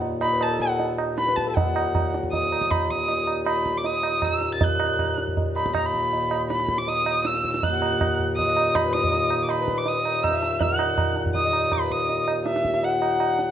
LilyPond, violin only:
\new Staff \with { instrumentName = "Violin" } { \time 4/4 \tempo 4 = 160 r8 ces'''8 a''8 ges''8 r4 \tuplet 3/2 { ces'''8. a''8 a''16 } | ges''4. r8 ees'''4 ces'''8 ees'''8~ | ees'''8 r8 ces'''8. d'''16 ees'''4 \tuplet 3/2 { fes'''4~ fes'''16 a'''16 } | ges'''4. r4 ces'''8 bes''16 ces'''8.~ |
ces'''8. r16 ces'''8. d'''16 ees'''4 fes'''4 | ges'''4. r8 ees'''4 ces'''8 ees'''8~ | \tuplet 3/2 { ees'''8. r8 d'''16 } ces'''8. d'''16 ees'''4 fes'''4 | ges'''4. r8 ees'''4 ces'''8 ees'''8~ |
ees'''8 r8 fes''4 ges''2 | }